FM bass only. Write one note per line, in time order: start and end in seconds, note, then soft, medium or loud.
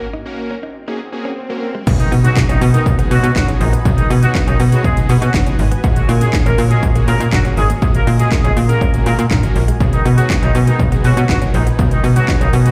1.87 2.03 B1 loud
2.12 2.28 B2 medium
2.37 2.45 B1 loud
2.49 2.57 B1 loud
2.61 2.77 B2 loud
2.86 3.02 B1 loud
3.11 3.19 B2 loud
3.23 3.31 B2 loud
3.36 3.52 G#1 medium
3.60 3.77 A#1 loud
3.85 4.02 B1 loud
4.10 4.26 B2 loud
4.35 4.43 B1 loud
4.47 4.55 B1 loud
4.60 4.76 B2 loud
4.84 5.01 B1 loud
5.09 5.17 B2 loud
5.22 5.30 B2 loud
5.34 5.50 F#1 loud
5.59 5.75 G#1 medium
5.84 6.00 A#1 loud
6.09 6.25 A#2 loud
6.33 6.41 A#1 loud
6.46 6.54 A#1 loud
6.58 6.74 A#2 loud
6.83 6.99 A#1 loud
7.08 7.16 A#2 loud
7.20 7.28 A#2 loud
7.33 7.49 F#1 loud
7.57 7.74 G#1 medium
7.82 7.98 A#1 loud
8.07 8.23 A#2 loud
8.32 8.40 A#1 loud
8.44 8.52 A#1 loud
8.57 8.73 A#2 loud
8.81 8.97 A#1 loud
9.06 9.14 A#2 loud
9.19 9.27 A#2 loud
9.31 9.47 G#1 loud
9.56 9.72 A#1 medium
9.80 9.97 B1 loud
10.05 10.21 B2 loud
10.30 10.38 B1 loud
10.43 10.51 B1 loud
10.55 10.71 B2 loud
10.80 10.96 B1 loud
11.05 11.13 B2 loud
11.17 11.25 B2 loud
11.29 11.45 G#1 medium
11.54 11.70 A#1 loud
11.79 11.95 B1 loud
12.04 12.20 B2 loud
12.28 12.36 B1 loud
12.41 12.49 B1 loud
12.53 12.69 B2 loud